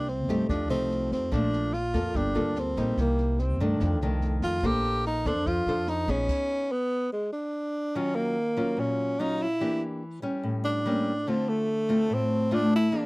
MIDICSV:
0, 0, Header, 1, 5, 480
1, 0, Start_track
1, 0, Key_signature, -2, "major"
1, 0, Tempo, 414365
1, 1522, Time_signature, 4, 2, 24, 8
1, 15126, End_track
2, 0, Start_track
2, 0, Title_t, "Tenor saxophone"
2, 0, Program_c, 0, 66
2, 0, Note_on_c, 0, 62, 89
2, 101, Note_on_c, 0, 60, 73
2, 119, Note_off_c, 0, 62, 0
2, 565, Note_off_c, 0, 60, 0
2, 572, Note_on_c, 0, 62, 66
2, 791, Note_off_c, 0, 62, 0
2, 815, Note_on_c, 0, 60, 75
2, 1255, Note_off_c, 0, 60, 0
2, 1306, Note_on_c, 0, 60, 70
2, 1540, Note_on_c, 0, 62, 78
2, 1557, Note_off_c, 0, 60, 0
2, 2008, Note_on_c, 0, 65, 77
2, 2026, Note_off_c, 0, 62, 0
2, 2508, Note_on_c, 0, 62, 75
2, 2525, Note_off_c, 0, 65, 0
2, 3001, Note_on_c, 0, 60, 71
2, 3018, Note_off_c, 0, 62, 0
2, 3461, Note_off_c, 0, 60, 0
2, 3489, Note_on_c, 0, 58, 73
2, 3939, Note_on_c, 0, 60, 61
2, 3957, Note_off_c, 0, 58, 0
2, 4192, Note_on_c, 0, 62, 66
2, 4210, Note_off_c, 0, 60, 0
2, 4657, Note_off_c, 0, 62, 0
2, 5135, Note_on_c, 0, 65, 83
2, 5398, Note_on_c, 0, 67, 97
2, 5416, Note_off_c, 0, 65, 0
2, 5860, Note_off_c, 0, 67, 0
2, 5870, Note_on_c, 0, 63, 83
2, 6106, Note_on_c, 0, 62, 78
2, 6124, Note_off_c, 0, 63, 0
2, 6339, Note_on_c, 0, 65, 75
2, 6356, Note_off_c, 0, 62, 0
2, 6822, Note_on_c, 0, 63, 81
2, 6839, Note_off_c, 0, 65, 0
2, 7072, Note_on_c, 0, 61, 84
2, 7089, Note_off_c, 0, 63, 0
2, 7785, Note_on_c, 0, 59, 71
2, 7803, Note_off_c, 0, 61, 0
2, 8247, Note_off_c, 0, 59, 0
2, 8254, Note_on_c, 0, 56, 61
2, 8472, Note_off_c, 0, 56, 0
2, 8489, Note_on_c, 0, 62, 65
2, 9220, Note_on_c, 0, 61, 81
2, 9237, Note_off_c, 0, 62, 0
2, 9448, Note_on_c, 0, 58, 81
2, 9466, Note_off_c, 0, 61, 0
2, 10191, Note_on_c, 0, 61, 74
2, 10209, Note_off_c, 0, 58, 0
2, 10659, Note_on_c, 0, 63, 90
2, 10676, Note_off_c, 0, 61, 0
2, 10912, Note_on_c, 0, 64, 91
2, 10930, Note_off_c, 0, 63, 0
2, 11378, Note_off_c, 0, 64, 0
2, 12331, Note_on_c, 0, 62, 78
2, 13073, Note_on_c, 0, 60, 73
2, 13090, Note_off_c, 0, 62, 0
2, 13310, Note_on_c, 0, 57, 79
2, 13328, Note_off_c, 0, 60, 0
2, 14064, Note_on_c, 0, 60, 78
2, 14081, Note_off_c, 0, 57, 0
2, 14525, Note_on_c, 0, 62, 89
2, 14542, Note_off_c, 0, 60, 0
2, 14744, Note_off_c, 0, 62, 0
2, 14779, Note_on_c, 0, 64, 91
2, 15126, Note_off_c, 0, 64, 0
2, 15126, End_track
3, 0, Start_track
3, 0, Title_t, "Nylon-string guitar"
3, 0, Program_c, 1, 24
3, 0, Note_on_c, 1, 48, 46
3, 335, Note_on_c, 1, 57, 45
3, 343, Note_on_c, 1, 63, 47
3, 347, Note_on_c, 1, 67, 61
3, 541, Note_off_c, 1, 48, 0
3, 574, Note_on_c, 1, 53, 48
3, 771, Note_off_c, 1, 57, 0
3, 773, Note_off_c, 1, 63, 0
3, 776, Note_off_c, 1, 67, 0
3, 804, Note_on_c, 1, 57, 46
3, 813, Note_on_c, 1, 63, 48
3, 815, Note_on_c, 1, 67, 44
3, 1485, Note_off_c, 1, 57, 0
3, 1489, Note_off_c, 1, 63, 0
3, 1489, Note_off_c, 1, 67, 0
3, 1504, Note_off_c, 1, 53, 0
3, 1523, Note_on_c, 1, 46, 40
3, 1523, Note_on_c, 1, 53, 46
3, 1524, Note_on_c, 1, 57, 46
3, 1530, Note_on_c, 1, 62, 48
3, 1998, Note_off_c, 1, 53, 0
3, 2000, Note_off_c, 1, 57, 0
3, 2003, Note_off_c, 1, 62, 0
3, 2242, Note_on_c, 1, 58, 45
3, 2247, Note_on_c, 1, 65, 46
3, 2252, Note_on_c, 1, 69, 55
3, 2458, Note_off_c, 1, 46, 0
3, 2479, Note_on_c, 1, 55, 48
3, 2684, Note_off_c, 1, 58, 0
3, 2686, Note_off_c, 1, 65, 0
3, 2687, Note_off_c, 1, 69, 0
3, 2720, Note_on_c, 1, 58, 46
3, 2726, Note_on_c, 1, 65, 48
3, 2730, Note_on_c, 1, 69, 55
3, 3162, Note_off_c, 1, 58, 0
3, 3166, Note_off_c, 1, 65, 0
3, 3166, Note_off_c, 1, 69, 0
3, 3198, Note_off_c, 1, 55, 0
3, 3211, Note_on_c, 1, 55, 46
3, 3218, Note_on_c, 1, 58, 49
3, 3219, Note_on_c, 1, 63, 56
3, 3447, Note_on_c, 1, 48, 43
3, 4128, Note_off_c, 1, 55, 0
3, 4130, Note_off_c, 1, 63, 0
3, 4131, Note_off_c, 1, 58, 0
3, 4175, Note_on_c, 1, 51, 53
3, 4183, Note_on_c, 1, 57, 49
3, 4184, Note_on_c, 1, 62, 58
3, 4380, Note_off_c, 1, 48, 0
3, 4413, Note_on_c, 1, 41, 55
3, 4610, Note_off_c, 1, 51, 0
3, 4613, Note_off_c, 1, 62, 0
3, 4614, Note_off_c, 1, 57, 0
3, 4663, Note_on_c, 1, 51, 53
3, 4664, Note_on_c, 1, 57, 54
3, 4668, Note_on_c, 1, 62, 46
3, 5333, Note_off_c, 1, 57, 0
3, 5335, Note_off_c, 1, 51, 0
3, 5337, Note_off_c, 1, 62, 0
3, 5343, Note_off_c, 1, 41, 0
3, 5369, Note_on_c, 1, 58, 48
3, 5369, Note_on_c, 1, 62, 50
3, 5376, Note_on_c, 1, 69, 49
3, 5381, Note_on_c, 1, 72, 48
3, 5842, Note_off_c, 1, 62, 0
3, 5847, Note_off_c, 1, 69, 0
3, 5847, Note_off_c, 1, 72, 0
3, 6093, Note_on_c, 1, 62, 48
3, 6102, Note_on_c, 1, 69, 52
3, 6108, Note_on_c, 1, 72, 59
3, 6302, Note_off_c, 1, 58, 0
3, 6340, Note_on_c, 1, 53, 54
3, 6529, Note_off_c, 1, 62, 0
3, 6534, Note_off_c, 1, 72, 0
3, 6535, Note_off_c, 1, 69, 0
3, 6579, Note_on_c, 1, 62, 49
3, 6587, Note_on_c, 1, 69, 49
3, 6587, Note_on_c, 1, 72, 47
3, 7013, Note_off_c, 1, 62, 0
3, 7015, Note_off_c, 1, 72, 0
3, 7016, Note_off_c, 1, 69, 0
3, 7045, Note_on_c, 1, 59, 56
3, 7051, Note_on_c, 1, 63, 47
3, 7056, Note_on_c, 1, 68, 54
3, 7267, Note_off_c, 1, 53, 0
3, 7745, Note_off_c, 1, 59, 0
3, 7747, Note_off_c, 1, 63, 0
3, 7750, Note_off_c, 1, 68, 0
3, 9212, Note_on_c, 1, 51, 46
3, 9214, Note_on_c, 1, 54, 48
3, 9218, Note_on_c, 1, 61, 48
3, 9225, Note_on_c, 1, 65, 58
3, 9685, Note_off_c, 1, 54, 0
3, 9688, Note_off_c, 1, 61, 0
3, 9692, Note_off_c, 1, 65, 0
3, 9923, Note_on_c, 1, 54, 51
3, 9932, Note_on_c, 1, 61, 49
3, 9933, Note_on_c, 1, 65, 63
3, 10145, Note_off_c, 1, 51, 0
3, 10157, Note_on_c, 1, 46, 51
3, 10606, Note_off_c, 1, 54, 0
3, 10608, Note_off_c, 1, 61, 0
3, 10610, Note_off_c, 1, 65, 0
3, 10650, Note_on_c, 1, 54, 45
3, 10659, Note_on_c, 1, 61, 45
3, 10664, Note_on_c, 1, 65, 58
3, 10957, Note_off_c, 1, 54, 0
3, 10959, Note_off_c, 1, 61, 0
3, 10963, Note_off_c, 1, 65, 0
3, 11097, Note_off_c, 1, 46, 0
3, 11127, Note_on_c, 1, 52, 53
3, 11130, Note_on_c, 1, 58, 46
3, 11135, Note_on_c, 1, 62, 48
3, 11138, Note_on_c, 1, 67, 49
3, 11603, Note_off_c, 1, 58, 0
3, 11607, Note_off_c, 1, 62, 0
3, 11608, Note_off_c, 1, 67, 0
3, 11837, Note_off_c, 1, 52, 0
3, 11842, Note_on_c, 1, 55, 51
3, 11853, Note_on_c, 1, 61, 57
3, 12087, Note_on_c, 1, 45, 49
3, 12525, Note_off_c, 1, 55, 0
3, 12530, Note_off_c, 1, 61, 0
3, 12575, Note_on_c, 1, 55, 52
3, 12583, Note_on_c, 1, 58, 52
3, 12590, Note_on_c, 1, 61, 53
3, 12879, Note_off_c, 1, 55, 0
3, 12883, Note_off_c, 1, 58, 0
3, 12886, Note_off_c, 1, 61, 0
3, 13021, Note_off_c, 1, 45, 0
3, 13053, Note_on_c, 1, 50, 50
3, 13062, Note_on_c, 1, 57, 46
3, 13069, Note_on_c, 1, 60, 44
3, 13072, Note_on_c, 1, 65, 54
3, 13529, Note_off_c, 1, 57, 0
3, 13530, Note_off_c, 1, 60, 0
3, 13535, Note_off_c, 1, 65, 0
3, 13773, Note_on_c, 1, 57, 53
3, 13780, Note_on_c, 1, 60, 57
3, 13782, Note_on_c, 1, 65, 54
3, 13986, Note_off_c, 1, 50, 0
3, 14014, Note_on_c, 1, 45, 48
3, 14450, Note_off_c, 1, 57, 0
3, 14452, Note_off_c, 1, 60, 0
3, 14454, Note_off_c, 1, 65, 0
3, 14492, Note_on_c, 1, 57, 54
3, 14500, Note_on_c, 1, 60, 55
3, 14506, Note_on_c, 1, 65, 61
3, 14796, Note_off_c, 1, 57, 0
3, 14800, Note_off_c, 1, 60, 0
3, 14803, Note_off_c, 1, 65, 0
3, 14944, Note_off_c, 1, 45, 0
3, 14964, Note_on_c, 1, 52, 52
3, 14968, Note_on_c, 1, 58, 53
3, 14971, Note_on_c, 1, 62, 53
3, 14979, Note_on_c, 1, 68, 57
3, 15126, Note_off_c, 1, 52, 0
3, 15126, Note_off_c, 1, 58, 0
3, 15126, Note_off_c, 1, 62, 0
3, 15126, Note_off_c, 1, 68, 0
3, 15126, End_track
4, 0, Start_track
4, 0, Title_t, "Upright bass"
4, 0, Program_c, 2, 32
4, 0, Note_on_c, 2, 36, 80
4, 329, Note_off_c, 2, 36, 0
4, 329, Note_on_c, 2, 43, 70
4, 549, Note_off_c, 2, 43, 0
4, 568, Note_on_c, 2, 41, 76
4, 800, Note_off_c, 2, 41, 0
4, 800, Note_on_c, 2, 36, 73
4, 1247, Note_off_c, 2, 36, 0
4, 1287, Note_on_c, 2, 41, 73
4, 1508, Note_off_c, 2, 41, 0
4, 1531, Note_on_c, 2, 34, 80
4, 2246, Note_on_c, 2, 41, 62
4, 2263, Note_off_c, 2, 34, 0
4, 2467, Note_off_c, 2, 41, 0
4, 2490, Note_on_c, 2, 31, 80
4, 2726, Note_on_c, 2, 38, 70
4, 2743, Note_off_c, 2, 31, 0
4, 3170, Note_off_c, 2, 38, 0
4, 3205, Note_on_c, 2, 34, 74
4, 3427, Note_off_c, 2, 34, 0
4, 3446, Note_on_c, 2, 36, 73
4, 4165, Note_off_c, 2, 36, 0
4, 4165, Note_on_c, 2, 43, 67
4, 4387, Note_off_c, 2, 43, 0
4, 4405, Note_on_c, 2, 41, 86
4, 4648, Note_off_c, 2, 41, 0
4, 4648, Note_on_c, 2, 36, 70
4, 5091, Note_off_c, 2, 36, 0
4, 5124, Note_on_c, 2, 41, 76
4, 5346, Note_off_c, 2, 41, 0
4, 5365, Note_on_c, 2, 34, 79
4, 6087, Note_on_c, 2, 41, 68
4, 6104, Note_off_c, 2, 34, 0
4, 6531, Note_off_c, 2, 41, 0
4, 6560, Note_on_c, 2, 41, 77
4, 7007, Note_off_c, 2, 41, 0
4, 7039, Note_on_c, 2, 34, 76
4, 7264, Note_off_c, 2, 34, 0
4, 15126, End_track
5, 0, Start_track
5, 0, Title_t, "Drums"
5, 93, Note_on_c, 9, 38, 19
5, 209, Note_off_c, 9, 38, 0
5, 330, Note_on_c, 9, 36, 22
5, 334, Note_on_c, 9, 38, 22
5, 445, Note_off_c, 9, 36, 0
5, 450, Note_off_c, 9, 38, 0
5, 571, Note_on_c, 9, 36, 53
5, 577, Note_on_c, 9, 37, 50
5, 577, Note_on_c, 9, 38, 21
5, 687, Note_off_c, 9, 36, 0
5, 693, Note_off_c, 9, 37, 0
5, 693, Note_off_c, 9, 38, 0
5, 818, Note_on_c, 9, 38, 19
5, 934, Note_off_c, 9, 38, 0
5, 1062, Note_on_c, 9, 38, 22
5, 1178, Note_off_c, 9, 38, 0
5, 1291, Note_on_c, 9, 36, 19
5, 1295, Note_on_c, 9, 38, 23
5, 1406, Note_off_c, 9, 36, 0
5, 1411, Note_off_c, 9, 38, 0
5, 1531, Note_on_c, 9, 36, 45
5, 1535, Note_on_c, 9, 37, 51
5, 1535, Note_on_c, 9, 38, 20
5, 1647, Note_off_c, 9, 36, 0
5, 1651, Note_off_c, 9, 37, 0
5, 1651, Note_off_c, 9, 38, 0
5, 1774, Note_on_c, 9, 38, 21
5, 1890, Note_off_c, 9, 38, 0
5, 2013, Note_on_c, 9, 38, 21
5, 2129, Note_off_c, 9, 38, 0
5, 2248, Note_on_c, 9, 36, 21
5, 2255, Note_on_c, 9, 37, 51
5, 2255, Note_on_c, 9, 38, 22
5, 2363, Note_off_c, 9, 36, 0
5, 2371, Note_off_c, 9, 37, 0
5, 2371, Note_off_c, 9, 38, 0
5, 2487, Note_on_c, 9, 36, 54
5, 2491, Note_on_c, 9, 38, 22
5, 2603, Note_off_c, 9, 36, 0
5, 2607, Note_off_c, 9, 38, 0
5, 2731, Note_on_c, 9, 38, 22
5, 2846, Note_off_c, 9, 38, 0
5, 2965, Note_on_c, 9, 37, 49
5, 2965, Note_on_c, 9, 38, 23
5, 3081, Note_off_c, 9, 37, 0
5, 3081, Note_off_c, 9, 38, 0
5, 3204, Note_on_c, 9, 36, 21
5, 3204, Note_on_c, 9, 38, 22
5, 3320, Note_off_c, 9, 36, 0
5, 3320, Note_off_c, 9, 38, 0
5, 3445, Note_on_c, 9, 36, 47
5, 3447, Note_on_c, 9, 37, 55
5, 3447, Note_on_c, 9, 38, 20
5, 3561, Note_off_c, 9, 36, 0
5, 3563, Note_off_c, 9, 37, 0
5, 3563, Note_off_c, 9, 38, 0
5, 3682, Note_on_c, 9, 38, 19
5, 3798, Note_off_c, 9, 38, 0
5, 3924, Note_on_c, 9, 38, 19
5, 4040, Note_off_c, 9, 38, 0
5, 4166, Note_on_c, 9, 36, 21
5, 4170, Note_on_c, 9, 38, 19
5, 4282, Note_off_c, 9, 36, 0
5, 4285, Note_off_c, 9, 38, 0
5, 4404, Note_on_c, 9, 37, 47
5, 4404, Note_on_c, 9, 38, 21
5, 4407, Note_on_c, 9, 36, 48
5, 4520, Note_off_c, 9, 37, 0
5, 4520, Note_off_c, 9, 38, 0
5, 4523, Note_off_c, 9, 36, 0
5, 4648, Note_on_c, 9, 38, 21
5, 4764, Note_off_c, 9, 38, 0
5, 4882, Note_on_c, 9, 38, 20
5, 4998, Note_off_c, 9, 38, 0
5, 5121, Note_on_c, 9, 38, 22
5, 5125, Note_on_c, 9, 36, 19
5, 5237, Note_off_c, 9, 38, 0
5, 5241, Note_off_c, 9, 36, 0
5, 5366, Note_on_c, 9, 36, 55
5, 5367, Note_on_c, 9, 37, 51
5, 5367, Note_on_c, 9, 38, 19
5, 5482, Note_off_c, 9, 36, 0
5, 5483, Note_off_c, 9, 37, 0
5, 5483, Note_off_c, 9, 38, 0
5, 5604, Note_on_c, 9, 38, 20
5, 5719, Note_off_c, 9, 38, 0
5, 5844, Note_on_c, 9, 38, 20
5, 5960, Note_off_c, 9, 38, 0
5, 6083, Note_on_c, 9, 37, 49
5, 6083, Note_on_c, 9, 38, 21
5, 6086, Note_on_c, 9, 36, 22
5, 6198, Note_off_c, 9, 37, 0
5, 6198, Note_off_c, 9, 38, 0
5, 6202, Note_off_c, 9, 36, 0
5, 6326, Note_on_c, 9, 38, 19
5, 6327, Note_on_c, 9, 36, 46
5, 6442, Note_off_c, 9, 36, 0
5, 6442, Note_off_c, 9, 38, 0
5, 6566, Note_on_c, 9, 38, 19
5, 6682, Note_off_c, 9, 38, 0
5, 6801, Note_on_c, 9, 37, 51
5, 6801, Note_on_c, 9, 38, 21
5, 6917, Note_off_c, 9, 37, 0
5, 6917, Note_off_c, 9, 38, 0
5, 7044, Note_on_c, 9, 36, 21
5, 7044, Note_on_c, 9, 38, 22
5, 7160, Note_off_c, 9, 36, 0
5, 7160, Note_off_c, 9, 38, 0
5, 7283, Note_on_c, 9, 49, 50
5, 7285, Note_on_c, 9, 36, 61
5, 7399, Note_off_c, 9, 49, 0
5, 7401, Note_off_c, 9, 36, 0
5, 15126, End_track
0, 0, End_of_file